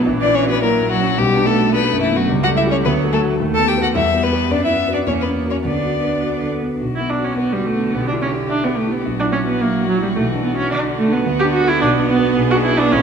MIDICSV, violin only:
0, 0, Header, 1, 2, 480
1, 0, Start_track
1, 0, Key_signature, 2, "minor"
1, 0, Tempo, 555042
1, 55, Time_signature, 2, 2, 24, 8
1, 3895, Tempo, 571973
1, 6775, Tempo, 553506
1, 11185, End_track
2, 0, Start_track
2, 0, Title_t, "Violin"
2, 0, Program_c, 0, 40
2, 185, Note_on_c, 0, 74, 76
2, 301, Note_on_c, 0, 73, 68
2, 314, Note_off_c, 0, 74, 0
2, 420, Note_off_c, 0, 73, 0
2, 427, Note_on_c, 0, 71, 76
2, 538, Note_off_c, 0, 71, 0
2, 543, Note_on_c, 0, 70, 78
2, 778, Note_off_c, 0, 70, 0
2, 789, Note_on_c, 0, 66, 81
2, 1026, Note_on_c, 0, 67, 85
2, 1039, Note_off_c, 0, 66, 0
2, 1267, Note_on_c, 0, 69, 84
2, 1280, Note_off_c, 0, 67, 0
2, 1501, Note_off_c, 0, 69, 0
2, 1506, Note_on_c, 0, 71, 83
2, 1739, Note_off_c, 0, 71, 0
2, 1742, Note_on_c, 0, 64, 76
2, 1871, Note_on_c, 0, 66, 66
2, 1884, Note_off_c, 0, 64, 0
2, 1986, Note_off_c, 0, 66, 0
2, 2108, Note_on_c, 0, 78, 76
2, 2154, Note_off_c, 0, 78, 0
2, 2223, Note_on_c, 0, 76, 74
2, 2270, Note_off_c, 0, 76, 0
2, 2346, Note_on_c, 0, 73, 79
2, 2392, Note_off_c, 0, 73, 0
2, 2464, Note_on_c, 0, 71, 74
2, 2533, Note_off_c, 0, 71, 0
2, 2705, Note_on_c, 0, 69, 78
2, 2774, Note_off_c, 0, 69, 0
2, 3068, Note_on_c, 0, 81, 81
2, 3183, Note_on_c, 0, 79, 73
2, 3196, Note_off_c, 0, 81, 0
2, 3299, Note_off_c, 0, 79, 0
2, 3310, Note_on_c, 0, 78, 81
2, 3355, Note_off_c, 0, 78, 0
2, 3421, Note_on_c, 0, 76, 76
2, 3660, Note_on_c, 0, 71, 77
2, 3673, Note_off_c, 0, 76, 0
2, 3902, Note_on_c, 0, 74, 74
2, 3915, Note_off_c, 0, 71, 0
2, 4011, Note_off_c, 0, 74, 0
2, 4016, Note_on_c, 0, 76, 70
2, 4245, Note_off_c, 0, 76, 0
2, 4259, Note_on_c, 0, 74, 63
2, 4304, Note_off_c, 0, 74, 0
2, 4367, Note_on_c, 0, 73, 61
2, 4415, Note_off_c, 0, 73, 0
2, 4490, Note_on_c, 0, 71, 56
2, 4557, Note_off_c, 0, 71, 0
2, 4733, Note_on_c, 0, 73, 55
2, 4781, Note_off_c, 0, 73, 0
2, 4855, Note_on_c, 0, 74, 60
2, 5573, Note_off_c, 0, 74, 0
2, 5835, Note_on_c, 0, 66, 39
2, 6779, Note_on_c, 0, 67, 44
2, 6792, Note_off_c, 0, 66, 0
2, 7743, Note_on_c, 0, 66, 44
2, 7756, Note_off_c, 0, 67, 0
2, 9649, Note_off_c, 0, 66, 0
2, 9654, Note_on_c, 0, 66, 57
2, 10612, Note_on_c, 0, 68, 57
2, 10625, Note_off_c, 0, 66, 0
2, 11099, Note_on_c, 0, 69, 59
2, 11112, Note_off_c, 0, 68, 0
2, 11185, Note_off_c, 0, 69, 0
2, 11185, End_track
0, 0, End_of_file